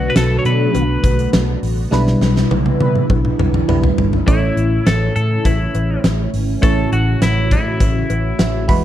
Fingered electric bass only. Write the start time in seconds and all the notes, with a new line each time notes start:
0.16 B1
0.45 B2
0.74 B1
1.04 B1
1.33 B1
1.63 A1
1.92 B1
2.21 B1
2.51 B1
2.80 B2
3.10 B1
3.40 B1
3.69 B1
3.98 G1
4.28 A1
4.57 A1
4.87 A1
5.16 A2
5.45 A1
5.75 A1
6.04 A1
6.33 G#1
6.63 A1
6.92 A1
7.21 A1
7.51 A2
7.80 A1
8.10 A1
8.39 A1
8.69 E1